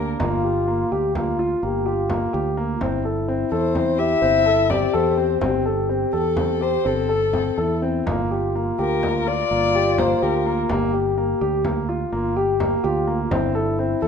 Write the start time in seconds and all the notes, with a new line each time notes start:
Already playing: D2 A#3 D4
0.20 G1 A#3 F4, frame drum
0.44 G4
0.68 A#3
0.92 D2 G4
1.15 A#3 F4, frame drum
1.39 F4, frame drum
1.63 G1 A#3 G4
1.86 F4 G4
2.10 A#3, frame drum
2.33 D2 G4
2.57 A#3
2.73 F4
2.81 G1 C4 E4, frame drum
3.05 A4
3.28 C4
3.51 E2 A4 C5
3.74 C4, frame drum
3.98 G4 E5, frame drum
4.22 G1 C4
4.46 A4
4.70 C4 G4 D5, frame drum
4.93 E2 A4 C5
5.17 C4
5.41 G1 C4 G4, frame drum
5.65 A4
5.89 C4
6.13 E2 A4
6.37 C4, frame drum
6.61 G4 C5
6.85 G1 C4 A4
7.09 A4, frame drum
7.33 C4, frame drum
7.58 E2 E4 A4
7.82 C4, frame drum
8.06 G1 A#3 F4, frame drum
8.31 G4
8.55 A#3
8.79 D2 G4 A#4
9.03 A#3, frame drum
9.27 F4 D5
9.51 G1 A#3
9.75 G4
9.98 A#3 C5, frame drum
10.22 D2 G4 A#4
10.46 A#3
10.69 G1 A#3 G4, frame drum
10.93 G4
11.18 A#3
11.41 D2 G4
11.65 A#3, frame drum
11.89 F4, frame drum
12.12 G1 A#3 F4
12.36 G4
12.60 A#3, frame drum
12.77 G4
12.84 D2 F4 G4
13.07 A#3
13.25 F4
13.31 G1 C4 E4, frame drum
13.55 A4
13.79 C4
14.02 E2 A4